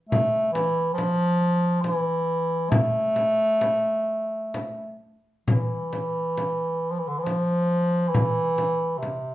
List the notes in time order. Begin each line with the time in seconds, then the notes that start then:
0.09 A3, frame drum
0.52 E3, frame drum
0.94 F3
0.98 frame drum
1.81 E3, frame drum
2.70 A3, frame drum
3.16 frame drum
3.61 frame drum
4.54 frame drum
5.46 E3, frame drum
5.93 frame drum
6.38 frame drum
6.91 F3
6.99 E3
7.08 D3
7.18 E3
7.23 F3, frame drum
8.08 E3
8.14 frame drum
8.58 frame drum
8.98 C3
9.03 frame drum